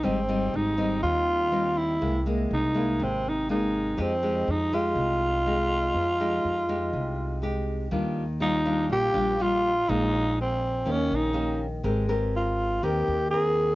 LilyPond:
<<
  \new Staff \with { instrumentName = "Tenor saxophone" } { \time 4/4 \key f \minor \tempo 4 = 122 c'4 ees'4 f'4. e'8~ | e'8 r8 dis'4 c'8 dis'8 dis'4 | c'4 ees'8 f'2~ f'8~ | f'2. r4 |
r4 ees'4 g'4 f'4 | ees'4 c'4 des'8 ees'4 r8 | r4 f'4 g'4 aes'4 | }
  \new Staff \with { instrumentName = "Nylon-string guitar" } { \time 4/4 \key f \minor << { <g c' ees'>8 <g c' ees'>4 <g c' ees'>4. <g c' ees'>4 | <gis bes e'>8 <gis bes e'>4 <gis bes e'>4. <gis bes>4 | <aes ees' g'>8 <aes ees' g'>4 <aes ees' g'>4. <aes ees' g'>4~ | <aes ees' g'>8 <aes ees' g'>4 <aes ees' g'>4. <aes ees' g'>4 |
<g d' f'>8 r8 <g d' f'>8 <g d' f'>4 <g d' f'>8 <g d' f'>8 r8 | <aes f'>2 <bes des' g'>4 <bes des' g'>8 r8 | <c' g' bes'>8 <c' g' bes'>4. <c' g' bes'>8 r8 <c' bes'>4 | } \\ { aes,2 ees2 | c2 c2 | f2 c2 | f2 c2 |
ees2 bes,2 | bes,2 ees2 | aes2 ees2 | } >> }
  \new Staff \with { instrumentName = "Upright bass" } { \clef bass \time 4/4 \key f \minor aes,,4 aes,,4 ees,2 | c,4 c,4 gis,,2 | f,4 f,4 c,2 | f,4 f,4 c,2 |
ees,2 bes,,8 bes,,4. | bes,,2 ees,8 bes,,4. | aes,,2 ees,8 ees,4. | }
>>